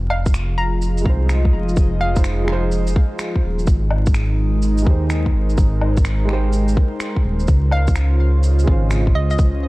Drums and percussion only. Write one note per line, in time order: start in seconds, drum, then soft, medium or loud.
0.10 low woodblock medium
0.26 kick loud
0.26 shaker medium
0.34 finger snap loud
0.34 shaker medium
0.82 shaker medium
0.98 shaker medium
1.05 kick loud
1.29 finger snap loud
1.29 shaker medium
1.45 kick medium
1.69 shaker soft
1.77 kick loud
1.77 shaker medium
2.16 kick loud
2.16 shaker medium
2.24 finger snap loud
2.24 shaker medium
2.48 finger snap medium
2.72 shaker medium
2.87 shaker medium
2.96 kick loud
3.19 finger snap loud
3.19 shaker medium
3.36 kick medium
3.59 shaker soft
3.67 kick loud
3.67 shaker medium
3.91 low woodblock medium
4.06 kick loud
4.06 shaker medium
4.14 finger snap loud
4.14 shaker medium
4.62 shaker medium
4.78 shaker medium
4.86 kick loud
5.10 finger snap loud
5.10 shaker medium
5.26 kick medium
5.50 shaker soft
5.58 kick loud
5.58 shaker medium
5.81 low woodblock medium
5.97 kick loud
5.97 shaker medium
6.05 finger snap loud
6.05 shaker medium
6.29 finger snap medium
6.53 shaker medium
6.68 shaker medium
6.77 kick loud
7.00 finger snap loud
7.00 shaker medium
7.16 kick medium
7.40 shaker soft
7.48 kick loud
7.48 shaker soft
7.71 low woodblock medium
7.87 kick loud
7.87 shaker medium
7.96 finger snap loud
7.96 shaker medium
8.43 shaker medium
8.59 shaker medium
8.67 kick loud
8.91 finger snap loud
8.91 shaker medium
9.07 kick medium
9.30 shaker soft
9.39 kick loud
9.39 shaker soft